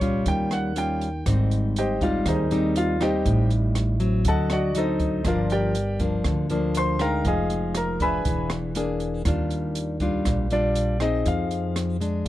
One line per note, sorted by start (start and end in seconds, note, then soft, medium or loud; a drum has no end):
0.00 0.22 A#1 medium
0.00 0.72 G3 medium
0.00 0.72 C#4 medium
0.00 0.73 F4 medium
0.00 0.23 C#5 medium
0.00 kick medium
0.00 closed hi-hat soft
0.26 1.22 D#2 medium
0.26 1.24 D#3 medium
0.26 0.51 G5 medium
0.26 kick medium
0.26 closed hi-hat soft
0.51 0.76 F#5 medium
0.51 cross-stick medium
0.51 closed hi-hat soft
0.76 1.08 G3 medium
0.76 1.08 C#4 medium
0.76 1.08 F4 medium
0.76 1.24 G5 medium
0.76 closed hi-hat soft
1.01 closed hi-hat soft
1.26 2.22 G#1 medium
1.26 2.23 G#2 soft
1.26 1.97 G3 medium
1.26 1.97 C4 medium
1.26 1.97 D#4 medium
1.26 kick medium
1.26 cross-stick soft
1.26 closed hi-hat soft
1.51 closed hi-hat soft
1.76 2.02 G4 medium
1.76 2.02 C5 medium
1.76 2.02 D#5 medium
1.76 2.01 G5 medium
1.76 closed hi-hat soft
2.01 2.47 G3 medium
2.01 2.47 C4 medium
2.01 2.47 D#4 medium
2.01 2.26 F4 medium
2.01 2.26 F5 medium
2.01 kick medium
2.01 closed hi-hat soft
2.26 3.22 D#2 medium
2.26 3.24 D#3 medium
2.26 2.73 D#4 medium
2.26 2.73 G#4 soft
2.26 2.73 C5 medium
2.26 2.73 D#5 medium
2.26 kick medium
2.26 cross-stick medium
2.26 closed hi-hat soft
2.51 2.97 G3 medium
2.51 2.97 C4 medium
2.51 2.97 D#4 medium
2.51 closed hi-hat soft
2.76 3.01 F4 medium
2.76 3.01 F5 medium
2.76 closed hi-hat soft
3.01 3.97 G3 medium
3.01 3.97 C4 medium
3.01 3.97 D#4 medium
3.01 3.48 G4 medium
3.01 3.48 C5 medium
3.01 3.48 D#5 medium
3.01 3.48 G5 medium
3.01 cross-stick medium
3.01 closed hi-hat soft
3.25 4.21 A1 medium
3.25 4.23 A2 medium
3.25 kick medium
3.25 closed hi-hat soft
3.50 closed hi-hat soft
3.75 cross-stick medium
3.75 closed hi-hat soft
4.00 4.71 F#3 medium
4.00 4.71 C4 medium
4.00 closed hi-hat soft
4.25 5.21 D2 medium
4.25 5.23 D3 medium
4.25 4.51 A4 medium
4.25 4.51 D#5 medium
4.25 4.51 A5 medium
4.25 kick medium
4.25 closed hi-hat soft
4.29 4.51 F#5 medium
4.50 4.76 F#4 medium
4.50 4.76 D5 medium
4.50 4.76 D#5 medium
4.50 4.76 F#5 medium
4.50 cross-stick medium
4.50 closed hi-hat soft
4.75 5.21 F#3 soft
4.75 5.22 C4 soft
4.75 5.22 D#4 medium
4.75 5.23 D#4 medium
4.75 5.23 A4 medium
4.75 5.23 C5 medium
4.75 5.23 D#5 medium
4.75 closed hi-hat soft
5.00 kick medium
5.00 closed hi-hat soft
5.25 6.21 G1 medium
5.25 6.23 G2 medium
5.25 5.75 F3 medium
5.25 5.75 A#3 soft
5.25 5.76 D4 medium
5.25 5.51 F4 soft
5.25 5.51 A#4 medium
5.25 5.51 D5 soft
5.25 5.51 F5 medium
5.25 kick medium
5.25 cross-stick soft
5.25 closed hi-hat soft
5.50 5.98 G4 medium
5.50 5.98 A#4 medium
5.50 5.98 D5 medium
5.50 5.98 G5 medium
5.50 closed hi-hat soft
5.75 closed hi-hat soft
6.00 6.46 F3 medium
6.00 6.46 A#3 medium
6.00 6.47 D4 medium
6.00 kick medium
6.00 closed hi-hat soft
6.24 7.21 D2 medium
6.24 7.23 D3 medium
6.24 kick medium
6.24 cross-stick medium
6.24 closed hi-hat soft
6.50 6.96 F3 medium
6.50 6.96 A#3 medium
6.50 6.97 D4 medium
6.50 closed hi-hat soft
6.75 7.01 C5 medium
6.75 7.00 C6 medium
6.75 closed hi-hat soft
6.99 7.96 G#3 medium
6.99 7.96 D#4 medium
6.99 7.25 A#4 medium
6.99 7.25 F5 medium
6.99 7.25 G5 medium
6.99 7.25 A#5 medium
6.99 cross-stick medium
6.99 closed hi-hat soft
7.25 8.21 F1 medium
7.25 8.23 F3 medium
7.25 7.73 G#4 medium
7.25 7.73 D#5 medium
7.25 7.73 F5 medium
7.25 7.73 G#5 medium
7.25 kick medium
7.25 closed hi-hat soft
7.50 closed hi-hat soft
7.75 8.01 A#4 medium
7.75 8.00 A#5 medium
7.75 cross-stick medium
7.75 closed hi-hat soft
8.00 8.71 D4 medium
8.00 8.72 G#4 medium
8.00 8.48 B4 medium
8.00 8.48 E5 medium
8.00 8.48 G#5 medium
8.00 8.48 B5 medium
8.00 kick medium
8.00 closed hi-hat soft
8.25 9.21 E1 medium
8.25 9.23 E3 medium
8.25 kick medium
8.25 closed hi-hat soft
8.50 cross-stick medium
8.50 closed hi-hat soft
8.75 9.22 A#3 soft
8.75 9.22 D4 medium
8.75 9.22 G#4 medium
8.75 closed hi-hat soft
9.00 closed hi-hat soft
9.25 10.21 D#2 medium
9.25 10.23 D#3 medium
9.25 9.96 G3 medium
9.25 9.97 D4 medium
9.25 9.97 F4 medium
9.25 kick medium
9.25 cross-stick medium
9.25 closed hi-hat soft
9.50 closed hi-hat soft
9.75 closed hi-hat soft
10.00 10.47 G3 medium
10.00 10.47 D4 medium
10.00 10.47 F4 medium
10.00 kick medium
10.00 closed hi-hat soft
10.25 11.21 A#1 medium
10.25 11.23 A#2 medium
10.25 kick medium
10.25 cross-stick medium
10.25 closed hi-hat soft
10.51 10.97 G3 medium
10.51 10.97 D4 medium
10.51 10.97 F4 medium
10.51 10.98 D5 medium
10.51 closed hi-hat soft
10.75 closed hi-hat soft
11.00 11.96 C4 medium
11.00 11.97 D#4 medium
11.00 11.97 G#4 medium
11.00 11.25 D#5 medium
11.00 cross-stick medium
11.00 closed hi-hat soft
11.26 12.21 F2 loud
11.26 12.00 F3 medium
11.26 11.73 F5 medium
11.26 kick soft
11.26 closed hi-hat soft
11.51 closed hi-hat soft
11.76 cross-stick medium
11.76 closed hi-hat soft
12.01 12.28 G#3 medium
12.01 12.28 D4 medium
12.01 closed hi-hat soft